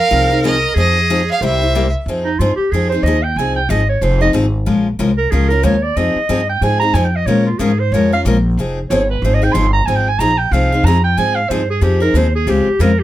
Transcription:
Already playing: clarinet A#4
0.00 violin F5
0.11 upright bass C2, steel-string acoustic guitar F3 C4 D#4 G#4
0.31 steel-string acoustic guitar C4 D#4 G#4
0.44 steel-string acoustic guitar F3 C4 D#4 G#4, violin D#5
0.75 upright bass F2, steel-string acoustic guitar F3 C4 D#4 G#4, clarinet G#4, violin D#5
1.10 steel-string acoustic guitar F3 C4 D#4 G#4
1.31 violin F5
1.41 upright bass C2, steel-string acoustic guitar C3 G3 A#3 E4 G4, clarinet C5, violin E5
1.61 steel-string acoustic guitar A#3 E4 G4
1.75 steel-string acoustic guitar C3 G3 A#3 E4 G4
2.06 upright bass F2, steel-string acoustic guitar F3 C4 D#4 G#4
2.24 clarinet D#4
2.39 upright bass G2, steel-string acoustic guitar F3 C4 D#4 G#4, clarinet F4
2.56 clarinet G4, muted upright bass stroke
2.71 upright bass F2, steel-string acoustic guitar F3 C4 D#4 G#4, clarinet G#4
2.89 steel-string acoustic guitar D#4 G#4, clarinet C5
2.94 steel-string acoustic guitar C4
3.03 upright bass D#2, steel-string acoustic guitar F3, clarinet D#5
3.07 steel-string acoustic guitar C4 D#4 G#4
3.23 clarinet G5
3.36 upright bass C2, steel-string acoustic guitar F3 C4 D#4 G#4, clarinet G#5
3.56 clarinet G5
3.69 upright bass G#1, steel-string acoustic guitar F3 C4 D#4 G#4, clarinet D#5
3.89 clarinet C#5
4.01 upright bass F1, steel-string acoustic guitar F3 C4 D#4 G#4, clarinet C5
4.21 steel-string acoustic guitar C4 D#4 G#4, clarinet D#5
4.33 upright bass G#1, steel-string acoustic guitar F3 C4 D#4 G#4
4.66 upright bass A#1, steel-string acoustic guitar F3 G#3 C#4 F4 A#4
4.99 upright bass C2, steel-string acoustic guitar F3 G#3 C#4 F4 A#4
5.18 clarinet A#4
5.31 upright bass C#2, steel-string acoustic guitar F3 G#3 C#4 F4 A#4, clarinet G#4
5.49 steel-string acoustic guitar C#4 F4 A#4, clarinet A#4
5.63 upright bass D#2, steel-string acoustic guitar F3 G#3 C#4 F4 A#4, clarinet C#5
5.83 clarinet D5
5.97 upright bass F2, steel-string acoustic guitar F3 C4 D#4 G#4, clarinet D#5
6.15 muted upright bass stroke
6.29 upright bass G2, steel-string acoustic guitar F3 C4 D#4 G#4
6.49 clarinet G5
6.61 upright bass G#2, steel-string acoustic guitar F3 C4 D#4 G#4, clarinet G#5
6.80 steel-string acoustic guitar C4 D#4 G#4, clarinet A#5
6.94 upright bass F2, steel-string acoustic guitar F3 C4 D#4 G#4, clarinet G#5
7.05 clarinet G5
7.16 clarinet D#5
7.26 upright bass A#2, steel-string acoustic guitar F3 G#3 C#4 F4 A#4, clarinet C#5
7.47 clarinet F4
7.59 upright bass G#2, steel-string acoustic guitar F3 G#3 C#4 F4 A#4, clarinet G#4
7.79 clarinet C5
7.92 upright bass F2, steel-string acoustic guitar F3 G#3 C#4 F4 A#4, clarinet C#5
8.13 steel-string acoustic guitar C#4 F4 A#4, clarinet F5
8.25 upright bass A#1, steel-string acoustic guitar F3 G#3 C#4 F4 A#4
8.58 upright bass F1, steel-string acoustic guitar F3 C4 D#4 G#4
8.90 upright bass G1, steel-string acoustic guitar F3 C4 D#4 G#4, clarinet C#5
9.10 clarinet B4
9.22 upright bass G#1, steel-string acoustic guitar F3 C4 D#4 G#4, clarinet C5
9.34 clarinet D#5
9.42 steel-string acoustic guitar C4 D#4 G#4, clarinet G5
9.53 upright bass G1, steel-string acoustic guitar F3 C4 D#4 G#4, clarinet C6
9.73 clarinet A#5
9.86 upright bass G#1, steel-string acoustic guitar F3 C4 D#4 G#4, clarinet G#5
9.96 clarinet G5
10.09 clarinet G#5
10.19 upright bass A#1, steel-string acoustic guitar F3 C4 D#4 G#4, clarinet A#5
10.38 clarinet G5
10.51 upright bass C2, steel-string acoustic guitar F3 C4 D#4 G#4, clarinet F5
10.72 steel-string acoustic guitar C4 D#4 G#4
10.84 upright bass F2, steel-string acoustic guitar F3 C4 D#4, clarinet A#5
10.88 steel-string acoustic guitar G#4
11.04 clarinet G5
11.17 upright bass G#2, steel-string acoustic guitar F3 C4 D#4 G#4, clarinet G#5
11.35 clarinet F5
11.49 upright bass G2, steel-string acoustic guitar F3 C4 D#4 G#4, clarinet C5
11.70 clarinet G#4
11.81 upright bass F2, steel-string acoustic guitar F3 C4 D#4 G#4, clarinet G4
12.00 steel-string acoustic guitar C4 D#4 G#4, clarinet A#4
12.14 upright bass D#2, steel-string acoustic guitar F3 C4 D#4 G#4, clarinet C5
12.35 clarinet G#4
12.47 upright bass C#2, steel-string acoustic guitar C#3 G#3 C4 F4 G#4, clarinet G4
12.67 muted upright bass stroke
12.79 upright bass F2, steel-string acoustic guitar C#3 G#3 C4 F4 G#4, clarinet A#4
12.99 clarinet G4

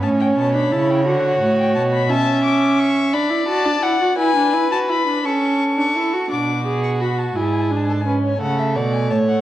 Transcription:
0.02 cello A2, viola C#4, violin C#5 A5
0.20 violin G5
0.37 cello B2, violin A5
0.55 viola D4, violin B5
0.72 cello C#3, viola E4, violin A5
0.90 violin G5
1.06 cello D3, viola F#4, violin F#5
1.41 cello A2
1.59 violin G5
1.75 cello B2, violin A5
1.93 violin B5
2.09 viola C#4, violin E5 A5
2.44 violin D6
2.78 violin C#6
3.13 viola D4, violin D5 B5
3.30 viola E4
3.48 viola F#4, violin A5
3.65 viola D4
3.82 viola E4, violin F#5
4.00 viola F#4
4.18 viola E4, violin B4 G#5
4.36 viola D4
4.53 viola E4
4.71 viola F#4, violin A5
4.88 viola E4, violin B5
5.07 viola D4
5.24 viola C#4, violin A4 C#6
5.78 viola D4
5.96 viola E4
6.13 viola F#4
6.30 cello B2, viola D4, violin F#4 D6
6.66 viola G#4
6.83 violin C#6
7.01 viola F#4, violin B5
7.18 violin A5
7.36 cello G#2, viola E4, violin G#4 G#5
7.45 violin A5
7.52 violin G#5
7.60 violin A5
7.68 viola D4, violin G#5
7.76 violin A5
7.85 violin G#5
7.89 violin A4 A5
8.01 violin G#5
8.06 viola C#4, violin B4
8.24 violin C#5
8.41 cello C#3, viola A3, violin A4 F#5
8.58 violin E5
8.76 cello B2, violin D5 F#5
8.93 violin G#5
9.10 cello A2, violin C#5 A5
9.28 violin F#5

